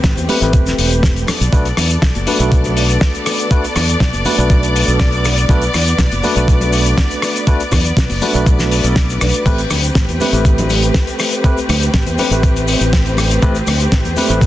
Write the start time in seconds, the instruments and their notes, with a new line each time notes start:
Already playing: string section A3 C4 G4 B4
0.04 fingered electric bass A1, kick, snare, closed hi-hat, maracas
0.17 fingered electric bass E2, closed hi-hat, high conga, maracas, shaker
0.29 tine electric piano A3 C4 G4 B4, muted fingered electric bass stroke, open hi-hat, high conga, low conga, maracas
0.41 fingered electric bass A1, tine electric piano A3 C4 G4 B4, closed hi-hat, maracas, shaker
0.53 fingered electric bass E1, kick, closed hi-hat, maracas, shaker
0.66 snare, closed hi-hat, shaker, maracas
0.78 fingered electric bass E1, open hi-hat, maracas
0.91 closed hi-hat, maracas, shaker
1.03 kick, snare, closed hi-hat, shaker, maracas
1.16 closed hi-hat, shaker
1.27 string section B3 A4 D5, muted fingered electric bass stroke, cross-stick, open hi-hat, low conga, maracas
1.40 fingered electric bass B1, closed hi-hat, maracas, shaker
1.52 fingered electric bass B1, tine electric piano A3 D4 F#4 B4, kick, closed hi-hat, maracas, shaker
1.65 closed hi-hat, maracas, shaker
1.77 fingered electric bass E2, cross-stick, open hi-hat, low conga, maracas
1.91 closed hi-hat, shaker, maracas
2.02 fingered electric bass B1, kick, snare, closed hi-hat, maracas, shaker
2.15 fingered electric bass F#1, closed hi-hat, high conga, shaker
2.27 tine electric piano A3 D4 F#4 B4, open hi-hat, high conga, low conga, maracas
2.39 fingered electric bass B1, tine electric piano A3 D4 F#4 B4, closed hi-hat, maracas, shaker
2.52 kick, closed hi-hat, maracas, shaker
2.64 closed hi-hat, low conga, shaker, maracas
2.77 open hi-hat, maracas
2.90 closed hi-hat, maracas, shaker
3.01 kick, snare, closed hi-hat, maracas, shaker
3.15 closed hi-hat, shaker
3.26 cross-stick, open hi-hat, maracas
3.39 closed hi-hat, maracas, shaker
3.51 tine electric piano A3 D4 F#4 B4, kick, closed hi-hat, shaker, maracas
3.64 closed hi-hat, maracas, shaker
3.76 fingered electric bass E2, cross-stick, open hi-hat, low conga, maracas
3.89 closed hi-hat, maracas, shaker
4.00 fingered electric bass B1, kick, snare, closed hi-hat, maracas, shaker
4.13 fingered electric bass F#1, closed hi-hat, high conga, maracas, shaker
4.25 tine electric piano A3 D4 F#4 B4, muted fingered electric bass stroke, open hi-hat, high conga, low conga, maracas
4.38 fingered electric bass B1, tine electric piano A3 D4 F#4 B4, closed hi-hat, maracas, shaker
4.50 kick, closed hi-hat, maracas, shaker
4.63 closed hi-hat, maracas, shaker
4.76 open hi-hat, maracas
4.88 fingered electric bass B1, closed hi-hat, maracas, shaker
5.00 kick, snare, closed hi-hat, maracas, shaker
5.12 closed hi-hat, shaker
5.24 string section B4, cross-stick, open hi-hat, low conga, maracas
5.37 closed hi-hat, maracas, shaker
5.49 fingered electric bass B1, tine electric piano A3 D4 F#4 B4, kick, closed hi-hat, shaker, maracas
5.62 closed hi-hat, maracas, shaker
5.74 fingered electric bass E2, cross-stick, open hi-hat, low conga, maracas
5.86 closed hi-hat, maracas, shaker
5.98 fingered electric bass B1, kick, snare, closed hi-hat, maracas, shaker
6.11 fingered electric bass F#1, closed hi-hat, high conga, shaker
6.23 tine electric piano A3 D4 F#4 B4, open hi-hat, high conga, low conga, maracas
6.35 fingered electric bass B1, tine electric piano A3 D4 F#4 B4, closed hi-hat, maracas, shaker
6.48 kick, closed hi-hat, maracas, shaker
6.61 closed hi-hat, low conga, shaker, maracas
6.73 open hi-hat, maracas
6.86 closed hi-hat, maracas, shaker
6.98 kick, snare, closed hi-hat, maracas, shaker
7.11 closed hi-hat, shaker
7.22 cross-stick, open hi-hat, maracas
7.36 closed hi-hat, maracas, shaker
7.47 tine electric piano A3 D4 F#4 B4, kick, closed hi-hat, maracas, shaker
7.60 closed hi-hat, maracas, shaker
7.71 fingered electric bass E2, kick, cross-stick, open hi-hat, low conga, maracas
7.85 closed hi-hat, maracas, shaker
7.97 fingered electric bass B1, kick, snare, closed hi-hat, maracas, shaker
8.09 fingered electric bass F#1, open hi-hat, high conga, maracas, shaker
8.22 tine electric piano A3 D4 F#4 B4, muted fingered electric bass stroke, open hi-hat, high conga, low conga, maracas
8.34 fingered electric bass B1, tine electric piano A3 D4 F#4 B4, closed hi-hat, shaker, maracas
8.46 kick, closed hi-hat, maracas, shaker
8.59 snare, closed hi-hat, maracas, shaker
8.71 open hi-hat, maracas
8.84 fingered electric bass B1, closed hi-hat, maracas, shaker
8.96 kick, snare, closed hi-hat, maracas, shaker
9.09 closed hi-hat, maracas, shaker
9.21 fingered electric bass B1, cross-stick, open hi-hat, low conga, maracas
9.34 closed hi-hat, shaker, maracas
9.45 fingered electric bass A1, string section A3 C4 G4, tine electric piano A3 C4 G4 B4, kick, closed hi-hat, crash, maracas, shaker
9.58 closed hi-hat, maracas, shaker
9.70 fingered electric bass D2, cross-stick, open hi-hat, low conga, maracas
9.83 closed hi-hat, maracas, shaker
9.95 fingered electric bass A1, kick, snare, closed hi-hat, shaker, maracas
10.09 fingered electric bass E2, closed hi-hat, high conga, shaker
10.20 tine electric piano A3 C4 G4 B4, open hi-hat, high conga, low conga, maracas
10.33 fingered electric bass A1, tine electric piano A3 C4 G4 B4, closed hi-hat, maracas, shaker
10.45 kick, closed hi-hat, maracas, shaker
10.58 closed hi-hat, low conga, shaker, maracas
10.70 open hi-hat, maracas
10.83 closed hi-hat, maracas, shaker
10.94 kick, snare, closed hi-hat, maracas, shaker
11.07 closed hi-hat, shaker
11.19 cross-stick, open hi-hat, maracas
11.32 closed hi-hat, maracas, shaker
11.44 tine electric piano A3 C4 G4 B4, kick, closed hi-hat, maracas, shaker
11.57 closed hi-hat, maracas, shaker
11.69 fingered electric bass D2, cross-stick, open hi-hat, low conga, maracas
11.81 closed hi-hat, maracas, shaker
11.94 fingered electric bass A1, kick, snare, closed hi-hat, maracas, shaker
12.06 fingered electric bass E2, closed hi-hat, high conga, maracas, shaker
12.18 tine electric piano A3 C4 G4 B4, muted fingered electric bass stroke, open hi-hat, high conga, low conga, maracas
12.31 fingered electric bass A1, tine electric piano A3 C4 G4 B4, closed hi-hat, shaker, maracas
12.43 kick, closed hi-hat, maracas, shaker
12.56 closed hi-hat, maracas, shaker
12.68 open hi-hat, maracas
12.81 fingered electric bass A1, closed hi-hat, maracas, shaker
12.93 kick, snare, closed hi-hat, maracas, shaker
13.06 closed hi-hat, shaker
13.17 cross-stick, open hi-hat, low conga, maracas
13.30 closed hi-hat, maracas, shaker
13.42 fingered electric bass A1, tine electric piano A3 C4 G4 B4, kick, closed hi-hat, maracas, shaker
13.55 closed hi-hat, maracas, shaker
13.66 fingered electric bass D2, cross-stick, open hi-hat, low conga, maracas
13.80 closed hi-hat, maracas, shaker
13.92 fingered electric bass A1, kick, snare, closed hi-hat, maracas, shaker
14.04 fingered electric bass E2, closed hi-hat, high conga, shaker
14.16 tine electric piano A3 C4 G4 B4, open hi-hat, high conga, low conga, maracas
14.29 fingered electric bass A1, tine electric piano A3 C4 G4 B4, closed hi-hat, maracas, shaker
14.41 kick, closed hi-hat, maracas, shaker